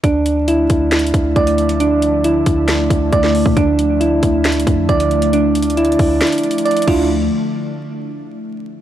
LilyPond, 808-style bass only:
\new Staff \with { instrumentName = "808-style bass" } { \clef bass \time 4/4 \key d \minor \tempo 4 = 136 d,4. d,4 d,8 d,4~ | d,4. d,4 d,8 d,8. a,16 | d,4. d,4 f,8 d,4~ | d,4. d,8 r4. d,8~ |
d,8 r2. r8 | }